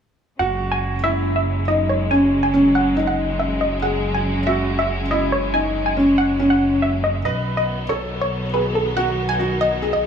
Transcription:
0.39 F#1 C#3 F#3 G#3 F#4 F#5
0.72 G#5
1.04 E4 E5
1.36 E5
1.68 D#4 D#5
1.89 C#5
2.11 C#4 G#5
2.43 G#5
2.54 C#4
2.75 F#5
2.97 D#4
3.07 F#5
3.39 E5
3.61 D#5
3.82 G#4 F#5
4.14 G#5
4.47 F#4 E5
4.79 E5
5.11 E4 D#5
5.32 C#5
5.54 D#4 G#5
5.86 G#5
5.97 C#4
6.18 F#5
6.40 C#4
6.50 F#5
6.82 E5
7.04 D#5
7.25 B1 D#3 F#3 B3 B4 D#5
7.57 D#5
7.89 A4 C#5
8.21 C#5
8.54 G#4 B4
8.75 A4
8.97 F#4 F#5
9.29 G#5
9.39 F#4
9.61 D#5
9.82 G#4
9.93 D#5

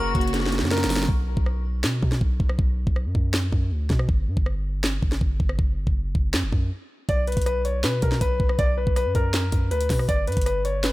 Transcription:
Already playing: F#1 C#3 A#3 F#4 A#4 C#6
0.15 F#1 A#3 F#4, kick, closed hi-hat
0.21 closed hi-hat
0.28 closed hi-hat
0.34 C#3, snare, closed hi-hat
0.40 snare
0.46 snare
0.52 A#3, snare, closed hi-hat
0.59 F#2, snare
0.65 snare
0.71 A#4, snare, closed hi-hat
0.78 snare, closed hi-hat
0.84 F#1, snare, closed hi-hat
0.90 F#3, snare, open hi-hat
0.96 snare
1.03 snare
1.09 B1, kick
1.37 B1, kick
1.46 cross-stick
1.84 B2, snare, clap
2.03 B2, kick
2.12 snare
2.21 B1, kick
2.40 B1, kick
2.49 cross-stick
2.59 B1, kick
2.87 B1, kick
2.96 cross-stick
3.06 F#2
3.15 F#2, kick
3.34 snare, clap
3.52 F#2, kick
3.71 D2
3.90 B2, kick, snare
3.99 cross-stick
4.09 G1, kick
4.27 G2
4.37 G1, kick
4.46 cross-stick
4.84 snare, clap
5.03 G1, kick
5.12 snare
5.21 G1, kick
5.40 G1, kick
5.49 cross-stick
5.59 F#1, kick
5.77 G1
5.87 F#1, kick
6.15 F#1, kick
6.34 F#2, snare, clap
6.43 F#1
6.53 F#2, kick
7.09 B1 D5, kick, closed hi-hat
7.27 B4, closed hi-hat
7.32 closed hi-hat
7.37 B1, kick, closed hi-hat
7.42 closed hi-hat
7.46 B4, cross-stick, closed hi-hat
7.65 C#5, closed hi-hat
7.84 B2 B4, snare, clap, closed hi-hat
8.02 B2 A#4, kick, closed hi-hat
8.12 snare
8.21 B1 B4, kick, closed hi-hat
8.40 B1, kick
8.49 cross-stick
8.59 B1 D5, kick, closed hi-hat
8.77 B4
8.87 B1, kick
8.96 B4, cross-stick, closed hi-hat
9.06 F#2
9.15 F#2 A#4, kick, closed hi-hat
9.34 snare, clap, closed hi-hat
9.52 F#2, kick, closed hi-hat
9.71 D2 B4, closed hi-hat
9.81 closed hi-hat
9.90 B2, kick, snare, open hi-hat
9.99 cross-stick
10.09 G1 D5, kick, closed hi-hat
10.27 G2 B4, closed hi-hat
10.32 closed hi-hat
10.37 G1, kick, closed hi-hat
10.41 closed hi-hat
10.46 B4, cross-stick, closed hi-hat
10.65 C#5, closed hi-hat
10.84 B4, snare, clap, closed hi-hat

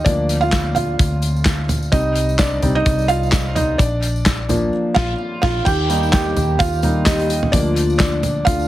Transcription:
0.04 D2 F3 A#3 D4 D5, kick, closed hi-hat, tambourine
0.29 closed hi-hat, tambourine
0.41 F4 F5, tambourine
0.52 kick, snare, clap, closed hi-hat, tambourine
0.75 F4 F5, closed hi-hat, floor tom, tambourine
0.99 D2, kick, closed hi-hat, tambourine
1.22 closed hi-hat, tambourine
1.36 tambourine
1.45 kick, snare, clap, closed hi-hat, tambourine
1.69 closed hi-hat, floor tom, tambourine
1.82 tambourine
1.92 C2 G3 C4 D#4 D#5, kick, closed hi-hat, tambourine
2.16 closed hi-hat, tambourine
2.29 tambourine
2.39 D4 D5, kick, snare, clap, closed hi-hat, tambourine
2.62 C2 G3 C4 D#4, closed hi-hat, floor tom, tambourine
2.75 D#4 D#5
2.86 C2, kick, closed hi-hat, tambourine
2.99 tambourine
3.08 F4 F5, closed hi-hat, tambourine
3.23 tambourine
3.32 kick, snare, clap, closed hi-hat, tambourine
3.55 D#4 D#5, closed hi-hat, floor tom, tambourine
3.78 A#1 D4 D5, kick, closed hi-hat, tambourine
4.03 closed hi-hat, tambourine
4.16 tambourine
4.26 kick, snare, clap, closed hi-hat, tambourine
4.49 F3 A#3 D4, closed hi-hat, floor tom, tambourine
4.94 A#1 F4 F5, kick, snare, crash
5.42 A#1 F4 F5, kick, snare, crash
5.65 D#2 D#3 D#4 G4 G5, kick, crash, tambourine
5.89 G3 A#3 D#4, closed hi-hat, tambourine
6.03 tambourine
6.12 G4 G5, kick, snare, clap, closed hi-hat, tambourine
6.36 D#2, closed hi-hat, floor tom, tambourine
6.59 D#2 F4 F5, kick, closed hi-hat, tambourine
6.73 tambourine
6.82 G3 A#3 D#4, closed hi-hat, floor tom, tambourine
7.05 G3 D#4 G4 D#5, kick, snare, clap, closed hi-hat, tambourine
7.19 closed hi-hat
7.30 closed hi-hat, tambourine
7.43 floor tom
7.52 D2 F3 A#3 D4 F4 D5, kick, closed hi-hat, tambourine
7.76 closed hi-hat, tambourine
7.90 tambourine
7.98 D4 D5, kick, snare, clap, closed hi-hat, tambourine
8.23 closed hi-hat, floor tom, tambourine
8.45 D2 D3 D4 F4 F5, kick, closed hi-hat, tambourine
8.59 tambourine

